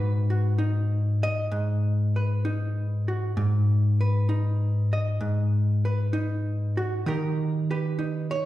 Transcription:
0.00 1.51 G#2 medium
0.00 0.58 D#4 medium
0.00 0.30 F#4 medium
0.00 1.52 B4 loud
0.30 3.07 F#4 soft
0.58 2.44 D#4 medium
1.23 3.37 D#5 loud
1.51 3.36 G#2 medium
2.16 3.34 B4 soft
2.45 4.28 D#4 medium
3.08 3.33 F#4 soft
3.37 5.19 G#2 medium
4.01 5.84 B4 medium
4.29 6.13 D#4 medium
4.93 8.34 D#5 medium
5.21 7.06 G#2 medium
5.85 7.03 B4 medium
6.13 7.07 D#4 medium
6.77 7.03 F#4 medium
7.06 8.45 D#3 medium
7.06 7.98 D#4 soft
7.06 7.70 G4 medium
7.06 7.69 A#4 medium
7.71 8.45 G4 soft
7.71 8.30 B4 medium
7.99 8.45 D#4 medium
8.31 8.45 C#5 medium

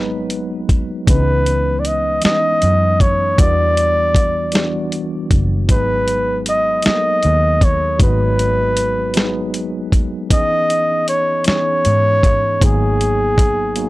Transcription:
0.00 0.70 G#1 medium
0.00 1.09 F#3 medium
0.00 1.06 G#3 medium
0.00 1.07 B3 medium
0.00 0.66 D#4 medium
0.00 1.09 F#4 medium
0.00 0.70 B4 loud
0.30 closed hi-hat soft
0.69 1.04 B1 medium
0.69 kick medium
0.69 closed hi-hat soft
1.05 2.19 C#2 medium
1.05 1.80 E3 medium
1.05 1.80 G#3 medium
1.05 1.81 B3 medium
1.05 1.81 C#4 medium
1.05 1.15 D4 medium
1.05 1.81 B4 loud
1.05 kick loud
1.05 closed hi-hat medium
1.15 1.85 D#4 medium
1.46 closed hi-hat medium
1.80 1.88 D5 medium
1.85 2.24 D#5 loud
1.85 closed hi-hat medium
2.21 2.95 E3 medium
2.21 2.96 G#3 medium
2.21 2.96 B3 medium
2.21 2.97 C#4 medium
2.21 2.97 D#4 medium
2.21 3.03 D#5 loud
2.21 muted fingered electric bass stroke soft
2.21 snare medium
2.21 closed hi-hat medium
2.62 3.35 F#2 medium
2.62 closed hi-hat soft
3.00 3.41 C#5 loud
3.00 kick medium
3.00 closed hi-hat soft
3.37 5.27 E2 medium
3.37 4.11 E3 medium
3.37 4.11 G3 medium
3.37 4.12 B3 medium
3.37 4.12 D4 medium
3.37 4.13 F#4 medium
3.37 5.31 D5 loud
3.37 kick loud
3.37 closed hi-hat medium
3.77 closed hi-hat medium
4.15 kick medium
4.15 closed hi-hat soft
4.52 5.26 E3 medium
4.52 5.27 G3 medium
4.52 5.27 B3 medium
4.52 5.27 D4 medium
4.52 snare medium
4.52 closed hi-hat medium
4.56 5.28 F#4 medium
4.92 closed hi-hat soft
5.31 5.70 F#1 medium
5.31 kick medium
5.31 closed hi-hat soft
5.67 6.81 G#1 medium
5.67 6.41 F#3 medium
5.67 6.42 G#3 medium
5.67 6.42 B3 medium
5.67 6.43 D#4 medium
5.67 6.43 G#4 medium
5.67 6.43 B4 loud
5.67 kick loud
5.67 closed hi-hat medium
6.08 closed hi-hat medium
6.46 6.83 D#5 loud
6.46 closed hi-hat medium
6.82 7.57 F#3 medium
6.82 7.57 A#3 medium
6.82 7.58 B3 medium
6.82 7.58 D#4 medium
6.82 snare medium
6.82 closed hi-hat medium
6.87 6.92 A4 medium
6.87 7.65 D#5 loud
6.87 muted fingered electric bass stroke soft
6.93 7.62 A#4 medium
7.23 8.02 D#2 medium
7.23 closed hi-hat soft
7.61 8.01 C#5 loud
7.61 kick medium
7.61 closed hi-hat soft
7.98 9.94 G#1 medium
7.98 8.72 F#3 medium
7.98 8.73 G#3 medium
7.98 8.73 B3 medium
7.98 8.73 D#4 medium
7.98 8.74 F#4 medium
7.98 kick loud
7.98 closed hi-hat medium
8.03 9.90 B4 loud
8.39 closed hi-hat medium
8.77 closed hi-hat medium
9.13 9.88 F#3 medium
9.13 9.88 G#3 medium
9.13 9.89 B3 medium
9.13 9.89 D#4 medium
9.13 9.89 G#4 medium
9.13 snare medium
9.13 closed hi-hat medium
9.54 closed hi-hat soft
9.92 10.32 B1 medium
9.92 kick medium
9.92 closed hi-hat soft
10.29 11.43 C#2 medium
10.29 11.03 E3 medium
10.29 11.04 B3 medium
10.29 11.04 C#4 medium
10.29 11.05 D#4 medium
10.29 11.05 G#4 medium
10.29 11.04 D#5 loud
10.29 kick loud
10.29 closed hi-hat medium
10.70 closed hi-hat medium
11.08 11.44 C#5 loud
11.08 closed hi-hat medium
11.44 12.19 E3 medium
11.44 12.19 B3 medium
11.44 12.20 C#4 medium
11.44 12.20 D#4 medium
11.44 12.65 C#5 loud
11.44 muted fingered electric bass stroke soft
11.44 snare medium
11.44 closed hi-hat medium
11.48 12.20 G#4 medium
11.85 12.58 G#2 medium
11.85 closed hi-hat soft
12.23 kick medium
12.23 closed hi-hat soft
12.60 13.89 G#1 medium
12.60 13.34 F#3 medium
12.60 13.34 A#3 medium
12.60 13.35 B3 medium
12.60 13.35 D#4 medium
12.60 13.89 G#4 loud
12.60 13.36 G#4 medium
12.60 kick loud
12.60 closed hi-hat medium
13.01 closed hi-hat medium
13.38 kick medium
13.38 closed hi-hat medium
13.76 13.89 F#3 medium
13.76 13.89 A#3 medium
13.76 13.89 B3 medium
13.76 13.89 D#4 medium
13.76 13.89 F#4 medium
13.76 closed hi-hat medium

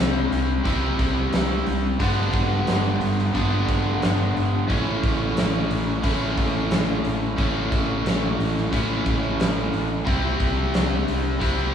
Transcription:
0.00 0.26 C2 medium
0.00 0.63 C3 medium
0.00 0.65 G3 medium
0.00 0.64 C4 medium
0.00 0.64 E4 medium
0.30 0.59 C2 medium
0.30 open hi-hat soft
0.64 0.94 C2 medium
0.64 1.97 C3 medium
0.64 1.98 G3 medium
0.64 1.98 C4 medium
0.64 1.99 E4 medium
0.64 kick medium
0.64 open hi-hat medium
0.99 1.27 C2 medium
0.99 kick medium
0.99 open hi-hat soft
1.32 1.61 C2 medium
1.32 snare loud
1.32 open hi-hat medium
1.66 1.95 C2 medium
1.66 open hi-hat soft
1.99 2.28 G1 medium
1.99 3.32 G2 medium
1.99 3.33 D3 medium
1.99 3.33 G3 medium
1.99 3.33 B3 medium
1.99 3.33 D4 medium
1.99 kick medium
1.99 open hi-hat medium
2.33 2.62 G1 medium
2.33 kick medium
2.33 open hi-hat soft
2.67 2.96 G1 medium
2.67 snare medium
2.67 open hi-hat medium
3.01 3.30 G1 medium
3.01 open hi-hat soft
3.19 snare soft
3.33 3.63 G1 medium
3.33 4.67 G2 medium
3.33 4.67 D3 medium
3.33 4.67 G3 medium
3.33 4.68 B3 medium
3.33 4.68 D4 medium
3.33 kick medium
3.33 open hi-hat medium
3.68 3.97 G1 medium
3.68 kick medium
3.68 open hi-hat soft
4.02 4.31 G1 medium
4.02 snare loud
4.02 open hi-hat medium
4.35 4.64 G1 medium
4.35 open hi-hat soft
4.68 4.98 A1 medium
4.68 6.02 A2 medium
4.68 6.02 E3 medium
4.68 6.03 A3 medium
4.68 6.04 C#4 medium
4.68 6.05 E4 medium
4.68 kick medium
4.68 open hi-hat soft
5.03 5.31 A1 medium
5.03 kick medium
5.03 open hi-hat soft
5.37 5.65 A1 medium
5.37 snare loud
5.37 open hi-hat medium
5.70 5.98 A1 medium
5.70 open hi-hat soft
6.02 6.32 A1 medium
6.02 7.35 A2 medium
6.02 7.37 E3 medium
6.02 7.36 A3 medium
6.02 7.37 C#4 medium
6.02 7.39 E4 medium
6.02 kick medium
6.02 open hi-hat medium
6.37 6.66 A1 medium
6.37 kick medium
6.37 open hi-hat soft
6.71 6.99 A1 medium
6.71 snare loud
6.71 open hi-hat medium
7.05 7.33 A1 medium
7.05 open hi-hat soft
7.36 7.66 A1 medium
7.36 8.70 A2 medium
7.36 8.72 E3 medium
7.36 8.70 A3 medium
7.36 8.71 C#4 medium
7.36 8.73 E4 medium
7.36 kick medium
7.36 open hi-hat medium
7.72 8.00 A1 medium
7.72 kick medium
7.72 open hi-hat soft
8.06 8.34 A1 medium
8.06 snare loud
8.06 open hi-hat medium
8.39 8.67 A1 medium
8.39 open hi-hat soft
8.57 snare soft
8.71 9.01 A1 medium
8.71 10.04 A2 medium
8.71 10.04 E3 medium
8.71 10.05 A3 medium
8.71 10.06 C#4 medium
8.71 10.05 E4 medium
8.71 kick medium
8.71 open hi-hat medium
9.06 9.34 A1 medium
9.06 kick medium
9.06 open hi-hat soft
9.39 9.68 A1 medium
9.39 snare loud
9.39 open hi-hat medium
9.73 10.02 A1 medium
9.73 open hi-hat soft
10.05 10.35 C2 medium
10.05 11.38 C3 medium
10.05 11.40 G3 medium
10.05 11.39 C4 loud
10.05 11.40 E4 medium
10.05 kick medium
10.05 open hi-hat soft
10.40 10.68 C2 medium
10.40 kick medium
10.40 open hi-hat soft
10.74 11.03 C2 medium
10.74 snare loud
10.74 open hi-hat medium
11.08 11.36 C2 medium
11.08 open hi-hat soft
11.40 11.70 C2 medium
11.40 11.74 C3 medium
11.40 11.74 G3 medium
11.40 11.74 C4 medium
11.40 11.74 E4 medium
11.40 kick medium
11.40 open hi-hat medium

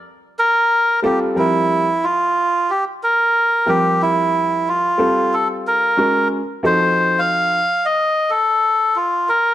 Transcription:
0.39 1.00 A#4 loud
1.03 1.34 G3 medium
1.03 1.34 C4 medium
1.03 1.36 F4 medium
1.03 1.19 G4 medium
1.03 1.36 A4 medium
1.35 1.86 F3 medium
1.35 1.85 G3 medium
1.35 1.86 C4 medium
1.35 2.05 E4 medium
1.35 1.86 A#4 medium
2.04 2.71 F4 loud
2.70 2.84 G4 medium
3.03 3.70 A#4 medium
3.66 4.84 F3 medium
3.66 4.84 G3 medium
3.66 4.84 C4 medium
3.66 4.02 G4 medium
3.66 4.84 A#4 medium
4.02 4.69 E4 medium
4.68 5.35 F4 medium
4.98 5.92 G3 medium
4.98 5.93 C4 medium
4.98 5.93 F4 medium
4.98 5.93 A4 medium
5.34 5.48 A4 medium
5.67 6.28 A#4 medium
5.97 6.39 G#3 medium
5.97 6.39 C#4 medium
5.97 6.39 F#4 medium
5.97 6.39 A#4 medium
6.63 7.57 F3 medium
6.63 7.57 C4 medium
6.63 7.58 D#4 medium
6.63 7.58 F#4 medium
6.63 7.58 A4 medium
6.63 7.20 C5 loud
7.19 7.86 F5 loud
7.85 8.31 D#5 medium
8.30 8.97 A4 medium
8.96 9.29 F4 medium
9.29 9.54 A#4 medium

